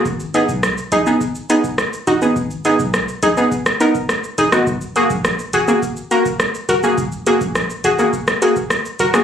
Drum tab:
HH |--x---x---x---x-|--x---x---x---x-|--x---x---x---x-|--x---x---x---x-|
SH |xxxxxxxxxxxxxxxx|xxxxxxxxxxxxxxxx|xxxxxxxxxxxxxxxx|xxxxxxxxxxxxxxxx|
SD |----r-------r---|----r----r--r--r|----r-------r---|----r----r--r--r|
BD |o--o----o--o----|o--o----o--o----|o--o----o--o----|o--o----o--o----|